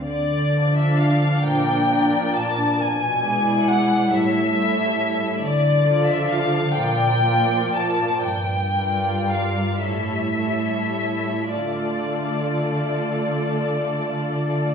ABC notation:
X:1
M:6/8
L:1/16
Q:3/8=43
K:Dm
V:1 name="Violin section"
d3 e f2 g4 a2 | ^g4 ^f2 e6 | d3 e f2 g4 a2 | g4 f2 e6 |
d12 |]
V:2 name="Violin section"
z2 [Ad]4 [Bd]2 [Bd]4 | z2 [^Gd]4 [A^c]2 [Ac]4 | z2 [Ad]4 [Bd]2 [Bd]4 | z2 [Bd]4 [A^c]2 [Ac]4 |
[Ad]12 |]
V:3 name="Viola section"
z2 [F,D]4 [F,D]2 [F,D]4 | z2 [^G,E]4 [=G,E]2 [G,E]4 | z2 [F,F]4 [F,F]2 [F,F]4 | z2 [G,F]4 [G,E]2 [G,E]4 |
[A,F]12 |]
V:4 name="Cello section" clef=bass
D,6 B,,6 | =B,,6 A,,6 | D,6 B,,6 | G,,6 A,,6 |
D,12 |]